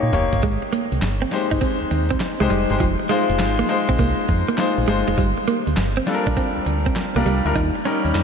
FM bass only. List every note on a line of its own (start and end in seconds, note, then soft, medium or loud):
0.03 0.11 A#2 medium
0.13 0.29 F1 loud
0.33 0.41 G1 medium
0.43 0.58 G#1 loud
0.92 1.00 C2 loud
1.02 1.26 G1 loud
1.52 1.60 G#1 medium
1.81 1.85 D#2 soft
1.92 2.15 D#2 medium
2.41 2.49 C2 medium
2.51 2.66 F1 medium
2.70 2.78 G1 medium
2.80 2.96 F1 loud
3.30 3.41 F1 medium
3.40 3.63 G#1 loud
3.89 3.97 A#1 medium
3.99 4.15 C2 loud
4.29 4.44 F2 medium
4.78 4.86 A#1 medium
4.88 5.04 G1 medium
5.08 5.16 F1 medium
5.18 5.33 G1 loud
5.67 5.75 D2 medium
5.77 6.01 G1 loud
6.27 6.35 A#1 medium
6.56 6.61 D2 medium
6.67 6.90 D2 medium
7.16 7.24 C2 medium
7.26 7.41 C2 loud
7.45 7.53 D2 medium
7.56 7.71 D#2 loud
8.05 8.13 D#2 medium
8.15 8.23 F2 loud